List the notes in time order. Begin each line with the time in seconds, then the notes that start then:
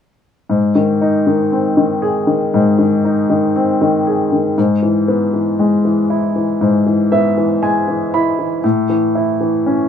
0.49 G#2
0.75 D#3
1.01 D#4
1.27 D#3
1.52 C4
1.77 D#3
2.02 G#4
2.27 D#3
2.54 G#2
2.79 D#3
3.04 D#4
3.30 D#3
3.56 C4
3.81 D#3
4.07 G#4
4.33 D#3
4.58 G#2
4.83 E3
5.08 B3
5.33 E3
5.59 G#3
5.85 E3
6.10 E4
6.36 E3
6.61 G#2
6.86 E3
7.12 B3 E5
7.37 E3
7.62 G#3 G#5
7.88 E3
8.14 E4 B5
8.39 E3
8.64 A2
8.89 E3
9.15 E4
9.41 E3
9.66 C#4